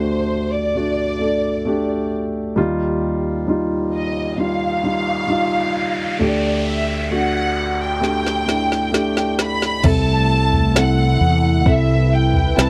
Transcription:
Already playing: D2 D3 A3 D4 F#4 G4 C5
0.53 D5
0.75 A3 D4 F#4
1.19 A3 D4 A4
1.65 A3 D4 G4
2.56 D#2 D#3 G3 D#4 F4, noise sweep
3.47 G3 D#4 F4
3.95 D#5
4.37 G3 D#4 F4
4.42 F5
4.83 G3 D#4 F4
5.27 G3 D#4 F4
6.19 D2 D3 A3 D4 G4 D5
6.68 E5
7.10 A3 D4 F#4 F#5
7.82 G5
8.00 A3 D4 G4, snare
8.26 snare
8.45 A3 D4 E4, snare
8.72 snare
8.92 A3 D4 G4, snare
9.17 snare
9.39 B5, snare
9.62 snare
9.83 C2 C3 A3 C4 E4 A4 A5, kick, floor tom, crash
10.52 floor tom
10.74 C4 E4 A4, snare
10.78 F#5
11.21 E2
11.65 C2 C4 E4 A4 B4, kick
11.69 E5
12.14 G5
12.34 floor tom
12.56 C2 C4 E4 B4 A5, snare

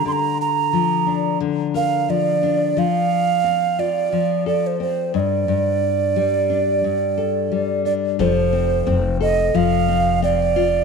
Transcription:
Already playing: A#4
0.05 D3 C6
0.12 A#5
0.41 A#5
0.73 F3
1.06 D4
1.40 D3
1.74 A#4 F5
2.09 F3 D5
2.43 D4
2.77 F3 F5
3.44 C4
3.79 F4 D5
4.12 F3
4.46 A4 D5
4.67 C5
4.80 C4 C5
5.14 G2 D#5
5.20 D5
5.48 G2
6.16 G3
6.50 D4
6.84 G2
7.18 A4
7.52 G3
7.85 D4 D5
8.19 F1 F3 A4 C5
8.53 C4
8.86 F1 C4
9.21 A4 D#5
9.54 F1 F3 F5
9.88 C4
10.22 C4 D5
10.56 F4

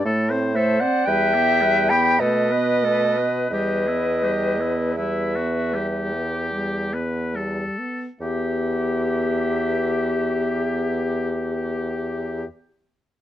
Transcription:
0.05 A2 A3 A4
0.30 C4 C5
0.55 A3 A4 C5 E5
0.80 C4 C5 D5 F#5
1.06 E2 G3 B4 E5 G5
1.34 B3 G4
1.62 G3 B4
1.90 B3 G4 G5 B5
2.20 B2 A3 A4 B4 D#5
2.52 B3 B4
2.83 A3 A4
3.17 B3 B4
3.50 E2 G3 G4 B4 D#5
3.87 B3 E4
4.24 G3 G4
4.60 B3 E4
4.96 G3 E4 B4 E5
5.36 B3 F#4
5.74 G3 G4
6.13 B3
6.53 G3
6.94 B3 B4
7.35 G3 A4
7.78 B3
8.20 E2 B3 G4 E5

